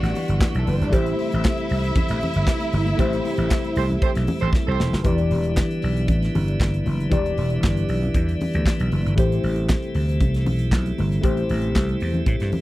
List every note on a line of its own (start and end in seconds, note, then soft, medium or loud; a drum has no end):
0.00 0.12 A1 medium
0.00 0.89 D3 medium
0.00 0.88 E3 medium
0.00 5.02 E3 medium
0.00 5.01 G3 medium
0.00 0.89 B3 medium
0.00 0.88 E4 medium
0.00 5.01 E4 medium
0.00 0.51 F#4 loud
0.00 0.89 G4 medium
0.00 0.90 D5 medium
0.00 0.51 F#5 loud
0.00 closed hi-hat soft
0.04 snare soft
0.15 open hi-hat medium
0.15 muted conga medium
0.28 0.38 G1 medium
0.28 closed hi-hat medium
0.41 kick loud
0.41 snare loud
0.41 clap medium
0.41 high conga medium
0.55 0.64 B1 medium
0.55 0.67 A3 medium
0.55 0.67 A4 medium
0.55 closed hi-hat soft
0.65 0.78 F#1 medium
0.65 0.75 B3 medium
0.65 0.75 B4 medium
0.65 open hi-hat medium
0.65 high conga medium
0.74 0.83 C4 medium
0.74 0.83 C5 medium
0.81 0.90 G1 medium
0.81 0.92 D4 medium
0.81 0.93 D5 loud
0.81 closed hi-hat soft
0.81 high conga medium
0.90 1.12 A1 loud
0.90 5.01 C3 medium
0.90 2.94 A3 medium
0.90 5.01 A3 medium
0.90 2.94 E4 medium
0.90 4.75 E4 loud
0.90 2.94 G4 medium
0.90 2.95 C5 medium
0.90 4.75 E5 loud
0.90 kick loud
0.90 closed hi-hat medium
0.90 muted conga soft
1.06 closed hi-hat soft
1.19 open hi-hat medium
1.19 muted conga soft
1.32 1.42 A1 medium
1.32 closed hi-hat medium
1.45 kick loud
1.45 snare loud
1.45 clap medium
1.45 high conga medium
1.57 closed hi-hat soft
1.69 1.90 C2 medium
1.69 open hi-hat medium
1.84 closed hi-hat soft
1.95 kick loud
1.95 closed hi-hat medium
1.95 muted conga medium
1.95 low conga medium
2.09 2.19 A1 medium
2.09 snare soft
2.09 closed hi-hat soft
2.21 open hi-hat medium
2.21 muted conga medium
2.21 low conga medium
2.34 2.45 G1 medium
2.34 closed hi-hat medium
2.47 kick loud
2.47 snare loud
2.47 clap medium
2.47 high conga medium
2.60 closed hi-hat soft
2.73 2.93 G1 medium
2.73 open hi-hat medium
2.73 high conga medium
2.87 closed hi-hat soft
2.87 high conga medium
2.97 3.19 A1 loud
2.97 5.00 A3 medium
2.97 5.01 E4 medium
2.97 5.01 G4 medium
2.97 5.02 C5 medium
2.97 kick loud
2.97 closed hi-hat medium
2.97 muted conga medium
3.13 closed hi-hat soft
3.25 open hi-hat medium
3.25 muted conga soft
3.37 3.47 A1 medium
3.37 closed hi-hat medium
3.51 kick loud
3.51 snare loud
3.51 clap loud
3.51 high conga medium
3.64 closed hi-hat soft
3.76 3.96 C2 loud
3.76 3.85 G4 medium
3.76 3.85 A4 medium
3.76 3.85 C5 medium
3.76 open hi-hat medium
3.90 closed hi-hat soft
3.90 low conga medium
4.02 4.11 G4 medium
4.02 4.11 A4 medium
4.02 4.11 C5 loud
4.02 kick loud
4.02 closed hi-hat soft
4.02 muted conga medium
4.15 4.25 B1 medium
4.15 snare soft
4.15 closed hi-hat medium
4.27 open hi-hat medium
4.27 muted conga medium
4.27 low conga medium
4.40 4.51 A1 medium
4.40 4.49 G4 medium
4.40 4.49 A4 medium
4.40 4.49 C5 medium
4.40 closed hi-hat medium
4.53 kick loud
4.53 snare medium
4.53 high conga medium
4.67 4.77 C2 loud
4.67 5.03 G4 loud
4.67 5.03 A4 medium
4.67 5.04 C5 loud
4.80 4.90 E1 medium
4.80 snare medium
4.80 high conga medium
4.93 5.02 F#1 loud
4.93 snare medium
4.93 high conga medium
5.03 5.24 E1 loud
5.03 9.14 D3 medium
5.03 7.06 E3 medium
5.03 7.07 E4 medium
5.03 9.14 E4 medium
5.03 7.07 G4 medium
5.03 7.08 D5 medium
5.03 kick loud
5.03 closed hi-hat medium
5.03 muted conga soft
5.07 9.14 E3 medium
5.07 12.61 G3 medium
5.07 9.14 B3 medium
5.18 closed hi-hat soft
5.31 5.60 E1 loud
5.31 open hi-hat medium
5.31 muted conga soft
5.43 closed hi-hat soft
5.57 kick medium
5.57 snare loud
5.57 clap medium
5.57 high conga medium
5.71 closed hi-hat soft
5.82 6.09 B1 medium
5.82 open hi-hat medium
5.97 closed hi-hat soft
6.08 6.28 A1 medium
6.08 kick loud
6.08 closed hi-hat medium
6.08 muted conga medium
6.08 low conga medium
6.23 snare soft
6.23 closed hi-hat soft
6.35 6.54 G1 medium
6.35 open hi-hat medium
6.35 muted conga medium
6.35 low conga medium
6.48 closed hi-hat medium
6.60 6.79 G1 medium
6.60 kick loud
6.60 snare loud
6.60 clap medium
6.60 high conga medium
6.74 closed hi-hat medium
6.86 7.05 F#1 medium
6.86 open hi-hat soft
6.86 high conga medium
7.00 closed hi-hat soft
7.10 7.31 E1 loud
7.10 9.13 E3 medium
7.10 9.13 E4 medium
7.10 9.13 G4 medium
7.10 9.14 D5 medium
7.10 kick loud
7.10 closed hi-hat medium
7.10 muted conga soft
7.26 closed hi-hat soft
7.37 7.57 E1 loud
7.37 open hi-hat medium
7.37 muted conga soft
7.50 closed hi-hat soft
7.64 7.83 G1 loud
7.64 kick loud
7.64 snare loud
7.64 clap medium
7.64 high conga medium
7.77 closed hi-hat soft
7.89 8.08 B1 loud
7.89 open hi-hat medium
8.03 closed hi-hat soft
8.03 low conga medium
8.14 8.34 E2 medium
8.14 kick loud
8.14 closed hi-hat medium
8.14 muted conga medium
8.29 closed hi-hat soft
8.41 open hi-hat medium
8.41 muted conga medium
8.41 low conga medium
8.54 8.63 D2 medium
8.54 closed hi-hat medium
8.66 kick loud
8.66 snare loud
8.66 clap medium
8.66 high conga medium
8.80 8.89 B1 medium
8.80 closed hi-hat medium
8.92 9.02 F#1 medium
8.92 open hi-hat medium
8.92 high conga medium
9.05 9.18 G1 loud
9.05 closed hi-hat soft
9.16 9.37 A1 loud
9.16 12.61 C3 medium
9.16 12.61 E3 medium
9.16 11.19 A3 medium
9.16 12.61 A3 medium
9.16 11.19 E4 medium
9.16 12.61 E4 medium
9.16 11.20 G4 medium
9.16 11.20 C5 medium
9.16 kick loud
9.16 closed hi-hat medium
9.16 muted conga soft
9.32 closed hi-hat soft
9.44 9.73 A1 loud
9.44 open hi-hat medium
9.56 closed hi-hat soft
9.69 kick loud
9.69 snare loud
9.69 clap medium
9.69 high conga medium
9.83 closed hi-hat soft
9.95 10.21 D2 loud
9.95 open hi-hat medium
10.09 closed hi-hat soft
10.20 10.47 C2 medium
10.20 kick loud
10.20 closed hi-hat medium
10.20 muted conga medium
10.20 low conga medium
10.34 snare soft
10.34 closed hi-hat medium
10.46 10.66 B1 loud
10.46 open hi-hat medium
10.46 muted conga medium
10.46 low conga medium
10.59 closed hi-hat medium
10.71 10.91 B1 medium
10.71 kick loud
10.71 snare loud
10.71 clap medium
10.71 high conga medium
10.86 closed hi-hat soft
10.98 11.18 G1 loud
10.98 open hi-hat medium
10.98 high conga medium
11.12 closed hi-hat soft
11.21 11.43 A1 loud
11.21 12.61 A3 medium
11.21 12.61 E4 medium
11.21 12.61 G4 medium
11.21 12.61 C5 medium
11.21 kick loud
11.21 closed hi-hat medium
11.21 muted conga soft
11.37 closed hi-hat soft
11.49 11.69 A1 medium
11.49 open hi-hat medium
11.49 muted conga soft
11.62 closed hi-hat soft
11.75 11.95 C2 medium
11.75 kick loud
11.75 snare loud
11.75 clap medium
11.75 high conga medium
11.89 closed hi-hat soft
12.00 12.21 E2 medium
12.00 open hi-hat medium
12.14 closed hi-hat soft
12.14 low conga medium
12.26 12.37 A2 medium
12.26 kick loud
12.26 closed hi-hat medium
12.26 muted conga medium
12.40 12.50 G2 medium
12.40 snare soft
12.40 closed hi-hat soft
12.52 open hi-hat medium
12.52 muted conga medium
12.52 low conga medium